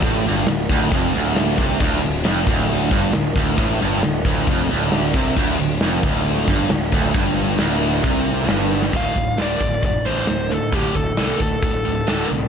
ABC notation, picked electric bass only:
X:1
M:4/4
L:1/8
Q:1/4=135
K:Dm
V:1 name="Picked electric bass" clef=bass
A,,, G,,, D,,, D,,, F,,, D,,,2 C,, | D,,, D,,, F,,, D,,,2 G,,, D,,, D,,, | A,,, G,,, D,,, D,,, F,,, D,,,2 C,, | D,,, D,,, F,,, D,,,2 G,,, D,,, D,,, |
G,,,2 D,,,2 C,,2 G,,,2 | D,,, D,,, D,,, D,,, F,,, A,,, D,,,2 | D,,, D,,, C,, D,,, D,,, D,,, D,,, C,, |]